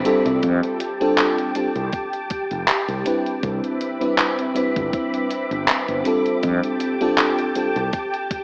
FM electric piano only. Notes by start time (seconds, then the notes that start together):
0.05 G3 C4 D4 F4 A4
1.00 G3 C4 D4 F4 A4
1.55 G3 C4 D4 F4 A4
3.04 G3 C4 D4 E4 B4
4.00 G3 C4 D4 E4 B4
4.54 G3 C4 D4 E4 B4
6.04 G3 C4 D4 F4 A4
7.01 G3 C4 D4 F4 A4
7.56 G3 C4 D4 F4 A4